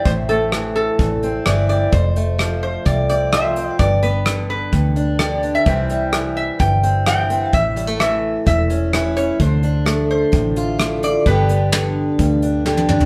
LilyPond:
<<
  \new Staff \with { instrumentName = "Resonator guitar played with a steel bar" } { \time 4/4 \key a \minor \tempo 4 = 128 c''8 a'4 a'4. d''8 d''8 | c''4. c''8 d''8 d''8 e''4 | d''8 b'4 b'4. d''8. e''16~ | e''4. e''8 g''4 g''4 |
e''4 e''4 e''4 cis''8 cis''8 | c''4. c''2 d''8 | b'2. r4 | }
  \new Staff \with { instrumentName = "Steel-string acoustic guitar" } { \time 4/4 \key a \minor << { e'8 a2 c'8 e'8 c'8 | r8 a2 c'8 f'8 c'8 | r8 b2 d'8 g'8 d'8 | <e g c' e'>8 g2 c'8 e'8 c'8 |
r8 g16 a4.~ a16 cis'8 e'8 cis'8 | r8 d'2 f'8 f'8 f'8 | <d b d' g'>8 b2 d'8 g'8 d'8 | } \\ { a,4 e4 e,4 e4 | f,4 f4 c4 f4 | g,4 d4 g,4 d4 | c4 e4 g,4 e4 |
a,4 e4 e,4 e4 | d4 a4 a,4 a4 | g,4 d4 g,4 d4 | } >> }
  \new Staff \with { instrumentName = "Fingered electric bass" } { \clef bass \time 4/4 \key a \minor a,,2 a,,4 g,,4 | f,,2 c,2 | g,,2 d,2 | c,2 g,,2 |
a,,2 e,,2 | d,2 a,,2 | g,,2 d,2 | }
  \new DrumStaff \with { instrumentName = "Drums" } \drummode { \time 4/4 <hh bd>8 hh8 <hh ss>4 <hh bd>8 hh8 <hh ss>8 hh8 | <hh bd>8 hh8 <hh ss>4 <hh bd>8 hh8 <hh ss>8 hh8 | <hh bd>8 hh8 <hh ss>4 <hh bd>8 hh8 <hh ss>8 hh8 | <hh bd>8 hh8 <hh ss>4 <hh bd>8 hh8 <hh ss>8 hh8 |
<hh bd>8 hh8 <hh ss>4 <hh bd>8 hh8 <hh ss>8 hh8 | <hh bd>8 hh8 <hh ss>4 <hh bd>8 hh8 <hh ss>8 hh8 | <hh bd>8 hh8 <hh sn>4 <hh bd>8 hh8 sn16 tommh16 toml16 tomfh16 | }
>>